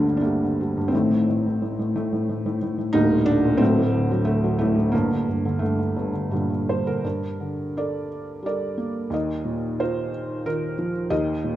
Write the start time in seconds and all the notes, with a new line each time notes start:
Already playing: G1 D2 G2 D3 G3 A3 A#3 C4 D4
0.07 D3
0.17 D4
0.21 G3 A3 A#3
0.44 D3
0.61 G3
0.77 G2
0.88 C4
0.92 A1 A2 D#3 A3
1.11 A2
1.29 A2
1.46 A2
1.62 A2
1.79 A2
1.96 A2 A3
2.13 A2
2.29 A2
2.46 A2
2.62 A2
2.78 A2
2.93 D1 D2 G3 A#3 D#4
3.13 A#2
3.26 D3 D4
3.45 A#2
3.57 F#3 A3 C4
3.62 D1 D2
3.77 A2
3.94 D3
4.11 F#3
4.25 D3 A3
4.44 F#3
4.59 A1 A2 A3
4.77 A2
4.92 G1 G2 D3 A#3
5.11 D3
5.29 G2
5.45 D3
5.59 G2 D3 A3
5.79 D3
5.96 G1 G2
6.13 D3
6.31 G2 A#2 D3 G3
6.50 D3
6.69 G2 C5
6.86 D3 A#4
7.04 G2 D4 A#4
7.40 D3
7.77 A4 A#4 D5
8.43 G3 A#4 D5
8.47 A4
8.78 A#3
9.10 D#2 A#4 D#5
9.45 A#2
9.80 D#4 F4 C5
10.46 D#3 D#4 F4 A#4
10.78 F3
11.10 D#2 G4 A#4 D#5
11.44 A#2